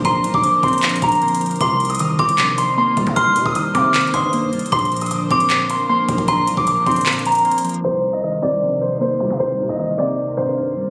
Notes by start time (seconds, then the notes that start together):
Already playing: A#2 D3 F3 A#3 C4 D4 A#4 C5 D6
0.05 A#1 A#2 A#5 C6, kick, closed hi-hat
0.24 C2 A#2, closed hi-hat
0.34 A#1 D6, kick
0.44 D3 D6, closed hi-hat
0.63 A#1 C4 C6, kick, closed hi-hat
0.68 closed hi-hat
0.73 closed hi-hat
0.78 closed hi-hat
0.83 A#2, clap, closed hi-hat
0.89 closed hi-hat
0.96 closed hi-hat
1.02 A#1 A#2 A#5, kick, closed hi-hat
1.09 closed hi-hat
1.12 closed hi-hat
1.15 closed hi-hat
1.22 A#3, closed hi-hat
1.28 closed hi-hat
1.35 closed hi-hat
1.41 F3, closed hi-hat
1.46 closed hi-hat
1.51 closed hi-hat
1.56 closed hi-hat
1.61 C2 C3 G3 D#4 C5 C6 D6, kick, closed hi-hat
1.80 C3, closed hi-hat
1.85 closed hi-hat
1.90 D#6, closed hi-hat
1.95 closed hi-hat
1.99 D#3 D#6, closed hi-hat
2.19 C2 C4 C6 D6, kick, closed hi-hat
2.29 closed hi-hat
2.38 A#1 C3, clap, closed hi-hat
2.58 C3 C6, closed hi-hat
2.77 A#3 C6
2.97 C2 G3, kick, closed hi-hat
3.07 C3, kick, closed hi-hat
3.16 C2 C3 C6 F6, kick, closed hi-hat
3.36 C3, closed hi-hat
3.46 C2 D#6, kick
3.55 D#3 D#6, closed hi-hat
3.74 C3 C4 D6, kick, closed hi-hat
3.94 C3, clap, closed hi-hat
4.01 closed hi-hat
4.07 closed hi-hat
4.14 G2 C3 C6 D#6, kick, closed hi-hat
4.33 A#3, closed hi-hat
4.53 G3, closed hi-hat
4.59 closed hi-hat
4.66 closed hi-hat
4.72 A#1 A#2 F3 D4 A#4 C6 D6, kick, closed hi-hat
4.79 closed hi-hat
4.85 closed hi-hat
4.92 A#2, closed hi-hat
4.97 closed hi-hat
5.01 D#6, closed hi-hat
5.06 closed hi-hat
5.11 D3 D#6, closed hi-hat
5.31 A#1 C4 C6 D6, kick, closed hi-hat
5.40 closed hi-hat
5.50 A#2, clap, closed hi-hat
5.70 A#2 C6, closed hi-hat
5.89 A#3 C6
6.09 A#1 F3, kick, closed hi-hat
6.18 A#1, kick, closed hi-hat
6.28 A#1 A#2 A#5 C6, kick, closed hi-hat
6.47 C2 A#2, closed hi-hat
6.57 A#1 D6, kick
6.67 D3 D6, closed hi-hat
6.86 A#1 C4 C6, kick, closed hi-hat
6.91 closed hi-hat
6.96 closed hi-hat
7.01 closed hi-hat
7.06 A#2, clap, closed hi-hat
7.13 closed hi-hat
7.19 closed hi-hat
7.26 A#2 A#5, closed hi-hat
7.32 closed hi-hat
7.35 closed hi-hat
7.38 closed hi-hat
7.45 A#3, closed hi-hat
7.51 closed hi-hat
7.58 closed hi-hat
7.64 F3, closed hi-hat
7.69 closed hi-hat
7.74 closed hi-hat
7.79 closed hi-hat
7.84 C2 C3 G3 D#4 A#4 C5
8.03 C3
8.13 D#5
8.23 D#3 D#5
8.42 C2 C4 D5
8.62 A#1 C3
8.81 C3 C5
9.01 A#3 C5
9.20 C2 G3
9.30 C3
9.40 C2 C3 C5
9.59 C3
9.69 C2 D#5
9.79 D#3 D#5
9.98 C3 C4 D5
10.18 C3
10.37 G2 C3 C5
10.57 A#3
10.77 G3